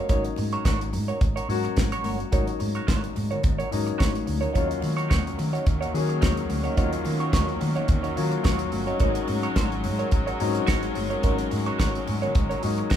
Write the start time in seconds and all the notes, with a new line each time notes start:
Already playing: F#3 A#3 C#4 F4 D#5 F#5
0.09 G#1 F#3 A#3 C#4 D#4 F#4 A#4 C#5, kick, closed hi-hat, muted conga
0.24 muted clean electric guitar stroke, closed hi-hat
0.36 G#2, muted clean electric guitar stroke, open hi-hat, muted conga
0.52 F#4 A#4 C#5, closed hi-hat
0.65 G#1 F#4 A#4 C#5, kick, snare, closed hi-hat, high conga
0.80 muted clean electric guitar stroke, closed hi-hat
0.92 G#2, muted clean electric guitar stroke, open hi-hat, muted conga
1.08 F#4 A#4 C#5, closed hi-hat
1.20 G#1, muted clean electric guitar stroke, kick, closed hi-hat, muted conga
1.36 F#4 A#4 C#5, closed hi-hat
1.49 G#2 F#3 A#3 C#4 F#4, muted clean electric guitar stroke, open hi-hat
1.64 muted clean electric guitar stroke, closed hi-hat
1.76 G#1, muted clean electric guitar stroke, kick, snare, closed hi-hat, high conga
1.92 F#4 A#4 C#5, closed hi-hat
2.04 G1 F#4 A#4 C#5, open hi-hat, high conga
2.20 muted clean electric guitar stroke, closed hi-hat
2.32 G#1 F#3 A#3 C#4 D#4 F#4 A#4 C#5, kick, closed hi-hat, muted conga
2.47 muted clean electric guitar stroke, closed hi-hat
2.59 G#2, muted clean electric guitar stroke, open hi-hat, muted conga
2.75 F#4 A#4 C#5, closed hi-hat
2.87 G#1 F#4 A#4 C#5, kick, snare, closed hi-hat, high conga
3.03 muted clean electric guitar stroke, closed hi-hat
3.16 G#2, muted clean electric guitar stroke, open hi-hat, muted conga
3.31 F#4 A#4 C#5, closed hi-hat, low conga
3.43 G#1, muted clean electric guitar stroke, kick, closed hi-hat, muted conga, low conga
3.58 F#4 A#4 C#5, closed hi-hat
3.71 G#2 F#3 A#3 C#4 D#4, open hi-hat
3.87 muted clean electric guitar stroke, closed hi-hat
3.98 G#1 F#4 A#4 C#5, kick, snare, closed hi-hat, high conga
4.14 muted clean electric guitar stroke, closed hi-hat, high conga
4.26 D2, muted clean electric guitar stroke, open hi-hat, high conga
4.41 F#4 A#4 C#5, closed hi-hat
4.52 D#2 D#3 F#3 A#3 C#4 D#4 F#4 C#5, kick, closed hi-hat, muted conga
4.57 F4
4.69 muted clean electric guitar stroke, closed hi-hat
4.81 D#3, muted clean electric guitar stroke, open hi-hat, muted conga
4.97 D#4 F#4 C#5, closed hi-hat
5.09 D#2 D#4 F#4 C#5, kick, snare, closed hi-hat, high conga
5.26 muted clean electric guitar stroke, closed hi-hat
5.38 D#3, muted clean electric guitar stroke, open hi-hat, muted conga
5.53 D#4 F#4 C#5, closed hi-hat
5.66 D#2, muted clean electric guitar stroke, kick, closed hi-hat, muted conga
5.81 D#4 F#4 C#5, closed hi-hat
5.93 D#3 F#3 A#3 C#4 G#4, muted clean electric guitar stroke, open hi-hat
6.09 muted clean electric guitar stroke, closed hi-hat
6.21 D#2 D#4 F#4 C#5, kick, snare, closed hi-hat, high conga
6.37 muted clean electric guitar stroke, closed hi-hat
6.49 D2, muted clean electric guitar stroke, open hi-hat, high conga
6.64 D#4 F#4 C#5, closed hi-hat
6.76 D#2 F3 A#3 C#4 D#4 F4 F#4 C#5, kick, closed hi-hat, muted conga
6.84 F#3
6.93 closed hi-hat
7.04 D#3, muted clean electric guitar stroke, open hi-hat, muted conga
7.20 D#4 F#4 C#5, closed hi-hat
7.32 D#2 D#4 F#4 C#5, kick, snare, closed hi-hat, high conga
7.48 muted clean electric guitar stroke, closed hi-hat
7.61 D#3, muted clean electric guitar stroke, open hi-hat, muted conga
7.76 D#4 F#4 C#5, closed hi-hat, low conga
7.88 D#2, muted clean electric guitar stroke, kick, closed hi-hat, low conga
8.03 D#4 F#4 C#5, closed hi-hat
8.16 D#3 F#3 A#3 C#4 F4, muted clean electric guitar stroke, open hi-hat
8.32 muted clean electric guitar stroke, closed hi-hat
8.44 D#2 D#4 F#4 C#5, kick, snare, closed hi-hat, high conga
8.59 muted clean electric guitar stroke, closed hi-hat
8.72 G1, muted clean electric guitar stroke, open hi-hat, high conga
8.87 D#4 F#4 C#5, closed hi-hat
8.99 G#1 F#3 G#3 A#3 C4 D#4 F#4 A#4 C#5, kick, closed hi-hat, muted conga
9.08 C#4
9.15 muted clean electric guitar stroke, closed hi-hat
9.28 G#2, muted clean electric guitar stroke, open hi-hat, muted conga
9.43 F#4 A#4 C#5, closed hi-hat
9.55 G#1 F#4 A#4 C#5, kick, snare, closed hi-hat, high conga
9.72 muted clean electric guitar stroke, closed hi-hat
9.84 G#2, muted clean electric guitar stroke, open hi-hat, muted conga
9.99 F#4 A#4 C#5, closed hi-hat
10.11 G#1, muted clean electric guitar stroke, kick, closed hi-hat, muted conga
10.27 F#4 A#4 C#5, closed hi-hat
10.39 G#2 F#3 A#3 C4 D#4, muted clean electric guitar stroke, open hi-hat
10.47 C#4
10.55 muted clean electric guitar stroke, closed hi-hat
10.67 G#1 F#4 A#4 C#5, kick, snare, closed hi-hat, high conga
10.83 muted clean electric guitar stroke, closed hi-hat
10.95 G1, muted clean electric guitar stroke, open hi-hat, high conga
11.10 F#4 A#4 C#5, closed hi-hat
11.23 G#1 F#3 A#3 C#4 D#4 F#4 A#4 C#5, kick, closed hi-hat, muted conga
11.38 muted clean electric guitar stroke, closed hi-hat
11.51 G#2, muted clean electric guitar stroke, open hi-hat, muted conga
11.66 F#4 A#4 C#5, closed hi-hat
11.78 G#1 F#4 A#4 C#5, kick, snare, closed hi-hat, high conga
11.94 muted clean electric guitar stroke, closed hi-hat
12.06 G#2, muted clean electric guitar stroke, open hi-hat, muted conga
12.22 F#4 A#4 C#5, closed hi-hat, low conga
12.35 G#1, muted clean electric guitar stroke, kick, closed hi-hat, muted conga, low conga
12.49 F#4 A#4 C#5, closed hi-hat
12.63 G#2 F#3 A#3 C#4 D#4, muted clean electric guitar stroke, open hi-hat
12.78 muted clean electric guitar stroke, closed hi-hat
12.90 G#1 F#4 A#4 C#5, kick, snare, closed hi-hat, high conga